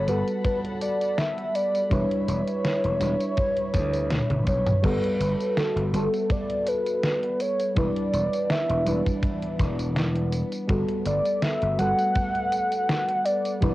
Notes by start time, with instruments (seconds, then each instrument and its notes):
Already playing: fm electric piano G3 B3 F#4 A4, string section G3 F#5 A5 B5
0.07 slap bass G1, fm electric piano G3 B3 F#4 A4, soft synth lead B4, closed hi-hat, tambourine
0.28 closed hi-hat, tambourine
0.45 soft synth lead B4, kick, closed hi-hat, tambourine
0.65 closed hi-hat
0.82 soft synth lead D5, closed hi-hat, tambourine
1.01 closed hi-hat, tambourine
1.18 soft synth lead E5, snare, closed hi-hat, tambourine
1.38 closed hi-hat
1.55 soft synth lead D5, closed hi-hat, tambourine
1.75 closed hi-hat, tambourine
1.89 slap bass E1, fm electric piano G3 D4 E4 B4, soft synth lead C#5, string section E5, kick, closed hi-hat, tambourine
2.11 closed hi-hat
2.28 slap bass E1, closed hi-hat, tambourine
2.47 closed hi-hat, tambourine
2.65 snare, closed hi-hat, tambourine
2.84 slap bass E1, closed hi-hat
2.99 slap bass E1, fm electric piano G3 D4 E4 B4, snare, closed hi-hat, tambourine
3.20 closed hi-hat, tambourine
3.37 kick, closed hi-hat, tambourine
3.57 closed hi-hat
3.74 slap bass D2, kick, closed hi-hat, high tom, tambourine
3.93 closed hi-hat, tambourine
4.10 snare, closed hi-hat, mid tom, tambourine
4.30 slap bass G1, closed hi-hat, mid tom
4.47 slap bass B1, soft synth lead C#5, kick, closed hi-hat, tambourine
4.67 closed hi-hat, mid tom, tambourine
4.82 slap bass G1, fm electric piano G3 B3 F#4 A4, string section A3 B3, soft synth lead B4, kick, closed hi-hat, crash, tambourine
5.04 closed hi-hat
5.20 slap bass G1, closed hi-hat, tambourine
5.41 closed hi-hat, tambourine
5.57 soft synth lead A4, snare, closed hi-hat, tambourine
5.76 slap bass G1, closed hi-hat
5.93 slap bass G1, fm electric piano G3 B3 F#4 A4, closed hi-hat, tambourine
6.14 closed hi-hat, tambourine
6.30 soft synth lead D5, kick, closed hi-hat, tambourine
6.50 closed hi-hat
6.67 soft synth lead B4, closed hi-hat, tambourine
6.87 closed hi-hat, tambourine
7.03 snare, closed hi-hat, tambourine
7.23 closed hi-hat
7.40 soft synth lead C#5, closed hi-hat, tambourine
7.60 closed hi-hat, tambourine
7.75 slap bass E1, string section E3 D4, fm electric piano G3 D4 E4 B4, soft synth lead D5, kick, closed hi-hat, tambourine
7.96 closed hi-hat
8.13 slap bass E1, closed hi-hat, tambourine
8.33 closed hi-hat, tambourine
8.50 soft synth lead E5, snare, closed hi-hat, tambourine
8.69 slap bass E1, closed hi-hat
8.85 slap bass E1, fm electric piano G3 D4 E4 B4, closed hi-hat, tambourine
9.06 kick, closed hi-hat, tambourine
9.23 kick, closed hi-hat, tambourine
9.42 closed hi-hat
9.59 slap bass E1, kick, snare, closed hi-hat, tambourine
9.79 closed hi-hat, tambourine
9.96 snare, closed hi-hat, tambourine
10.15 closed hi-hat
10.32 closed hi-hat, tambourine
10.52 closed hi-hat, tambourine
10.68 slap bass G1, fm electric piano G3 B3 F#4 A4, string section A3, kick, closed hi-hat, tambourine
10.89 closed hi-hat
11.06 slap bass G1, soft synth lead D5, closed hi-hat, tambourine
11.26 closed hi-hat, tambourine
11.42 soft synth lead E5, snare, closed hi-hat, tambourine
11.62 slap bass G1, closed hi-hat
11.78 slap bass G1, fm electric piano G3 B3 F#4 A4, soft synth lead F#5, closed hi-hat, tambourine
11.99 closed hi-hat, tambourine
12.15 kick, closed hi-hat, tambourine
12.35 closed hi-hat
12.52 closed hi-hat, tambourine
12.72 closed hi-hat, tambourine
12.89 snare, closed hi-hat, tambourine
13.09 closed hi-hat
13.25 soft synth lead D5, closed hi-hat, tambourine
13.45 closed hi-hat, tambourine
13.61 slap bass E1, string section E3 D4, fm electric piano G3 D4 E4 B4, soft synth lead D5, kick, closed hi-hat, tambourine